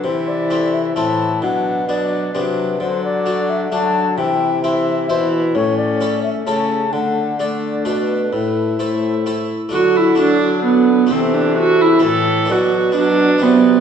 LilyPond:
<<
  \new Staff \with { instrumentName = "Flute" } { \time 3/4 \key a \dorian \tempo 4 = 130 c''8 d''4 e''8 a''4 | fis''4 d''4 b'4 | c''8 d''4 e''8 a''4 | g''4 e''4 c''4 |
cis''8 d''4 e''8 a''4 | fis''4 d''4 b'4 | b'4 c''4. r8 | a'4 a'2 |
a'2 a'4 | d''4 d''4 d''4 | }
  \new Staff \with { instrumentName = "Viola" } { \time 3/4 \key a \dorian e'2 e'4 | d'4 d'4 d'4 | d'2 d'4 | e'4 e'4 e'4 |
cis'2 cis'4 | d'4 d'2 | e'4 e'4. r8 | fis'8 e'8 d'4 b4 |
c'8 d'8 fis'8 e'8 a'4 | fis'4 d'4 b4 | }
  \new Staff \with { instrumentName = "Harpsichord" } { \time 3/4 \key a \dorian r4 <a c' e'>4 <a c' e'>4 | r4 <b d'>4 <b d'>4 | r4 <a d' fis'>4 <a d' fis'>4 | r4 <c' e'>4 <e' c''>4 |
r4 <cis' e' a'>4 <cis' e' a'>4 | r4 <a d' a'>4 <a d' a'>4 | r4 <a e' a'>4 <a e' a'>4 | <a d' fis'>4 <a d' fis'>2 |
<a e'>2 <a e'>4 | <b d'>4 <b d'>4 <b d'>4 | }
  \new Staff \with { instrumentName = "Harpsichord" } { \clef bass \time 3/4 \key a \dorian c2 a,4 | b,2 c4 | d2. | c2 b,4 |
a,4. r8 cis4 | d2 b,4 | a,2~ a,8 r8 | d2. |
c2 a,4 | b,2 c4 | }
  \new Staff \with { instrumentName = "Viola" } { \clef bass \time 3/4 \key a \dorian e2 e4 | fis4 fis4 fis4 | fis2 fis4 | e4 e4 e4 |
a2 a4 | a4 a2 | a4 a4. r8 | fis4 fis2 |
e2 e4 | fis4 fis4 fis4 | }
  \new Staff \with { instrumentName = "Bassoon" } { \clef bass \time 3/4 \key a \dorian c2 a,4 | b,2 c4 | d2. | c2 b,4 |
a,4. r8 cis4 | d2 b,4 | a,2~ a,8 r8 | d2. |
c2 a,4 | b,2 c4 | }
>>